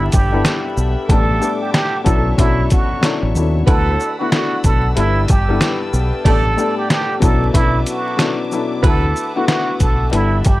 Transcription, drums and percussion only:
0.12 kick, closed hi-hat, shaker
0.45 snare, closed hi-hat
0.77 shaker
1.09 kick, closed hi-hat
1.42 shaker
1.74 snare, closed hi-hat
2.06 kick, closed hi-hat, shaker
2.38 kick, closed hi-hat
2.70 kick, closed hi-hat, shaker
3.03 snare, closed hi-hat
3.35 shaker
3.67 kick, closed hi-hat
4.00 shaker
4.32 snare, closed hi-hat
4.64 kick, closed hi-hat, shaker
4.97 closed hi-hat
5.28 kick, closed hi-hat, shaker
5.61 snare, closed hi-hat
5.93 shaker
6.25 kick, closed hi-hat
6.58 shaker
6.90 snare, closed hi-hat
7.22 kick, closed hi-hat, shaker
7.54 kick, closed hi-hat
7.86 closed hi-hat, shaker
8.19 snare, closed hi-hat
8.52 shaker
8.83 kick, closed hi-hat
9.16 shaker
9.48 snare, closed hi-hat
9.80 kick, closed hi-hat, shaker
10.13 closed hi-hat
10.45 kick, closed hi-hat, shaker

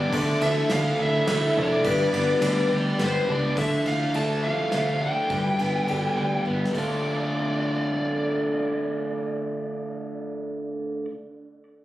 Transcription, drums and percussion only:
0.12 kick, crash
0.41 ride
0.69 snare, ride
1.27 snare, ride
1.84 kick, ride
2.13 ride
2.42 snare, ride
2.99 snare, ride
3.57 kick, crash
3.86 ride
4.14 ride
4.72 snare, ride
5.30 kick, ride
5.59 ride
5.88 ride
6.46 kick
6.65 snare
6.75 kick, crash

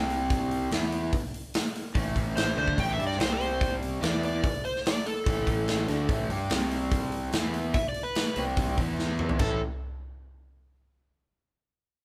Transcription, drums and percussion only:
0.10 open hi-hat
0.30 kick, open hi-hat
0.51 open hi-hat
0.71 snare, open hi-hat
0.92 open hi-hat
1.13 kick, open hi-hat
1.34 open hi-hat
1.54 snare, open hi-hat
1.75 open hi-hat
1.95 kick, open hi-hat
2.16 kick, open hi-hat
2.37 snare, open hi-hat
2.58 high tom
2.68 kick
2.78 kick, open hi-hat
3.00 open hi-hat
3.12 snare
3.20 snare, open hi-hat
3.41 open hi-hat
3.61 kick, open hi-hat
3.82 open hi-hat
4.03 snare, open hi-hat
4.23 open hi-hat
4.44 kick, open hi-hat
4.65 open hi-hat
4.76 snare
4.86 snare, open hi-hat
5.06 open hi-hat
5.26 kick, open hi-hat
5.47 kick, open hi-hat
5.68 snare, open hi-hat
5.88 snare, open hi-hat
6.09 kick, open hi-hat
6.30 open hi-hat
6.50 snare, open hi-hat
6.71 open hi-hat
6.91 kick, open hi-hat
7.12 open hi-hat
7.32 snare, open hi-hat
7.54 open hi-hat
7.74 kick, open hi-hat
7.94 open hi-hat
8.15 snare, open hi-hat
8.36 open hi-hat
8.57 kick, open hi-hat
8.77 kick, open hi-hat
8.99 snare
9.19 mid tom
9.29 floor tom
9.39 kick, crash

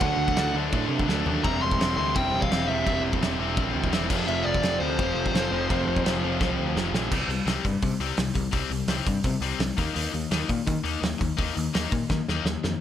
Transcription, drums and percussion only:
0.00 kick, crash
0.28 kick
0.36 snare, crash
0.72 kick, crash
0.99 kick
1.09 snare
1.26 floor tom
1.44 kick, crash
1.71 kick
1.81 snare, crash
2.16 kick, crash
2.42 kick
2.51 snare, crash
2.87 kick, crash
3.13 kick
3.22 snare, crash
3.57 kick, crash
3.84 kick
3.93 snare, crash
4.10 kick, crash
4.28 crash
4.54 kick
4.63 snare, crash
4.99 kick, crash
5.26 kick
5.35 snare, crash
5.70 kick, crash
5.96 kick
6.06 snare, crash
6.41 kick, snare
6.77 snare
6.95 snare
7.12 kick, crash
7.30 open hi-hat
7.47 snare, open hi-hat
7.65 kick, open hi-hat
7.82 kick, open hi-hat
8.00 open hi-hat
8.17 snare, open hi-hat
8.35 kick, open hi-hat
8.52 kick, open hi-hat
8.71 open hi-hat
8.88 snare, open hi-hat
9.06 kick, open hi-hat
9.24 kick, open hi-hat
9.42 open hi-hat
9.60 snare, open hi-hat
9.78 kick, open hi-hat
9.96 open hi-hat
10.14 open hi-hat
10.31 snare, open hi-hat
10.49 kick, open hi-hat
10.67 kick, open hi-hat
10.85 open hi-hat
11.03 snare, open hi-hat
11.21 kick, open hi-hat
11.39 kick, open hi-hat
11.57 open hi-hat
11.75 snare, open hi-hat
11.92 kick, open hi-hat
12.10 kick, snare
12.28 snare
12.46 snare
12.64 snare

